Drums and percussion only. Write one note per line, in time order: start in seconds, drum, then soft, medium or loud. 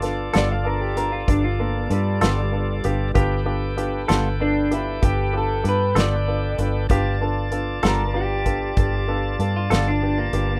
0.02 snare soft
0.02 closed hi-hat medium
0.34 snare loud
0.34 closed hi-hat medium
0.97 closed hi-hat medium
1.28 kick loud
1.28 closed hi-hat medium
1.91 closed hi-hat medium
2.21 snare loud
2.21 closed hi-hat medium
2.84 closed hi-hat medium
3.15 kick loud
3.15 closed hi-hat medium
3.78 closed hi-hat medium
4.09 snare loud
4.09 closed hi-hat medium
4.72 closed hi-hat medium
5.03 kick loud
5.03 closed hi-hat medium
5.65 closed hi-hat medium
5.96 snare loud
5.96 closed hi-hat medium
6.59 closed hi-hat medium
6.90 kick loud
6.90 closed hi-hat medium
7.52 closed hi-hat medium
7.83 snare loud
7.83 closed hi-hat medium
8.46 kick medium
8.46 closed hi-hat medium
8.77 kick loud
8.77 closed hi-hat medium
9.40 closed hi-hat medium
9.71 snare loud
9.71 closed hi-hat medium
10.33 closed hi-hat medium